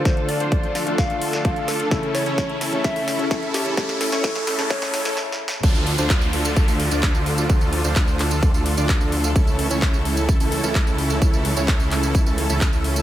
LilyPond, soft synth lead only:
\new Staff \with { instrumentName = "Soft synth lead" } { \time 4/4 \key d \minor \tempo 4 = 129 c''8 d''4. f''4. a'8~ | a'8 cis''4. e''4. g'8~ | g'8 a'4. cis''4 r4 | r1 |
r1 | r1 | r1 | }